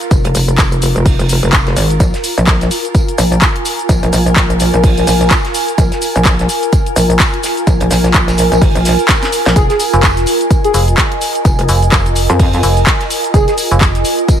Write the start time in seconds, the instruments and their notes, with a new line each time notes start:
Already playing: ambient pad F4 A#4
0.01 closed hi-hat, shaker
0.11 wobble bass F1, kick, closed hi-hat, tambourine, shaker
0.24 wobble bass F1, closed hi-hat, shaker
0.35 wobble bass F1, open hi-hat, tambourine, shaker
0.49 closed hi-hat, shaker
0.58 wobble bass F1, kick, snare, clap, closed hi-hat, tambourine, shaker
0.72 closed hi-hat, shaker
0.82 open hi-hat, tambourine, shaker
0.96 wobble bass F1, closed hi-hat, shaker
1.06 kick, closed hi-hat, open hi-hat, shaker
1.19 wobble bass F1, closed hi-hat, shaker
1.29 open hi-hat, tambourine, shaker
1.43 wobble bass F1, closed hi-hat, shaker
1.52 kick, snare, clap, closed hi-hat, tambourine, shaker
1.67 snare, closed hi-hat
1.76 wobble bass G#1, open hi-hat, tambourine, shaker
1.90 closed hi-hat, shaker
2.00 wobble bass A#1, kick, closed hi-hat, tambourine, shaker
2.14 snare, closed hi-hat, shaker
2.24 ambient pad G#5, open hi-hat, tambourine, shaker
2.38 wobble bass A#1, closed hi-hat, shaker
2.47 kick, snare, clap, closed hi-hat, tambourine, shaker
2.61 snare, closed hi-hat, shaker
2.71 open hi-hat, tambourine, shaker
2.85 closed hi-hat, shaker
2.95 kick, closed hi-hat, tambourine, shaker
3.08 closed hi-hat, shaker
3.18 wobble bass A#1, open hi-hat, tambourine, shaker
3.32 closed hi-hat, shaker
3.42 kick, snare, clap, closed hi-hat, tambourine, shaker
3.56 closed hi-hat
3.65 open hi-hat, tambourine, shaker
3.79 closed hi-hat, shaker
3.89 wobble bass A#1, kick, closed hi-hat, tambourine, shaker
4.03 wobble bass A#1, closed hi-hat, shaker
4.13 wobble bass A#1, open hi-hat, tambourine, shaker
4.27 closed hi-hat, shaker
4.36 wobble bass A#1, kick, snare, clap, closed hi-hat, tambourine, shaker
4.50 closed hi-hat, shaker
4.59 open hi-hat, tambourine, shaker
4.74 wobble bass A#1, closed hi-hat, shaker
4.84 kick, closed hi-hat, open hi-hat, shaker
4.97 closed hi-hat, shaker
5.07 wobble bass A#1, open hi-hat, tambourine, shaker
5.21 closed hi-hat, shaker
5.31 kick, snare, clap, closed hi-hat, tambourine, shaker
5.45 snare, closed hi-hat
5.54 open hi-hat, tambourine, shaker
5.68 closed hi-hat, shaker
5.78 wobble bass A#1, kick, closed hi-hat, tambourine, shaker
5.92 snare, closed hi-hat, shaker
6.02 open hi-hat, tambourine, shaker
6.16 wobble bass A#1, closed hi-hat, shaker
6.25 kick, snare, clap, closed hi-hat, tambourine, shaker
6.39 snare, closed hi-hat, shaker
6.49 open hi-hat, tambourine, shaker
6.63 closed hi-hat, shaker
6.73 kick, closed hi-hat, tambourine, shaker
6.86 closed hi-hat, shaker
6.96 wobble bass A#1, open hi-hat, tambourine, shaker
7.10 closed hi-hat, shaker
7.20 kick, snare, clap, closed hi-hat, tambourine, shaker
7.34 closed hi-hat
7.43 snare, open hi-hat, tambourine, shaker
7.57 closed hi-hat, shaker
7.67 wobble bass A#1, kick, closed hi-hat, tambourine, shaker
7.80 wobble bass A#1, closed hi-hat, shaker
7.90 wobble bass A#1, snare, open hi-hat, tambourine, shaker
8.05 snare, closed hi-hat, shaker
8.14 wobble bass A#1, kick, clap, closed hi-hat, tambourine, shaker
8.28 snare, closed hi-hat, tambourine, shaker
8.38 snare, open hi-hat, shaker
8.52 wobble bass A#1, closed hi-hat, tambourine, shaker
8.62 wobble bass G#1, kick, closed hi-hat, open hi-hat, shaker
8.75 wobble bass A#1, closed hi-hat, shaker
8.85 snare, open hi-hat, tambourine, shaker
8.99 closed hi-hat, shaker
9.08 kick, snare, clap, closed hi-hat, tambourine, shaker
9.22 snare, closed hi-hat, shaker
9.32 open hi-hat, tambourine, shaker
9.46 wobble bass A#1, snare, closed hi-hat, shaker
9.56 wobble bass F1, digital synth lead G#4, kick, closed hi-hat, tambourine, shaker
9.70 digital synth lead G#4, snare, closed hi-hat, shaker
9.78 ambient pad D#5, open hi-hat, tambourine, shaker
9.93 fm bass F1, closed hi-hat, shaker
10.03 kick, snare, clap, closed hi-hat, tambourine, shaker
10.17 snare, closed hi-hat, shaker
10.26 open hi-hat, tambourine, shaker
10.41 closed hi-hat, shaker
10.50 kick, closed hi-hat, tambourine, shaker
10.64 digital synth lead G#4, closed hi-hat, shaker
10.74 fm bass F1, digital synth lead G#4, open hi-hat, tambourine, shaker
10.88 closed hi-hat, shaker
10.97 kick, snare, clap, closed hi-hat, tambourine, shaker
11.12 closed hi-hat
11.21 open hi-hat, tambourine, shaker
11.35 closed hi-hat, shaker
11.45 wobble bass F1, kick, closed hi-hat, tambourine, shaker
11.59 wobble bass F1, closed hi-hat, shaker
11.69 fm bass F1, open hi-hat, tambourine, shaker
11.83 closed hi-hat, shaker
11.92 fm bass F1, kick, snare, clap, closed hi-hat, tambourine, shaker
12.06 closed hi-hat, shaker
12.15 open hi-hat, tambourine, shaker
12.30 wobble bass F2, closed hi-hat, shaker
12.39 kick, closed hi-hat, open hi-hat, shaker
12.53 closed hi-hat, shaker
12.63 fm bass F1, open hi-hat, tambourine, shaker
12.77 closed hi-hat, shaker
12.86 kick, snare, clap, closed hi-hat, tambourine, shaker
13.01 snare, closed hi-hat
13.10 open hi-hat, tambourine, shaker
13.24 closed hi-hat, shaker
13.34 wobble bass F1, digital synth lead G#4, kick, closed hi-hat, tambourine, shaker
13.47 digital synth lead G#4, snare, closed hi-hat, shaker
13.58 open hi-hat, tambourine, shaker
13.71 fm bass F1, closed hi-hat, shaker
13.81 kick, snare, clap, closed hi-hat, tambourine, shaker
13.95 snare, closed hi-hat, shaker
14.04 open hi-hat, tambourine, shaker
14.19 closed hi-hat, shaker
14.28 kick, closed hi-hat, tambourine, shaker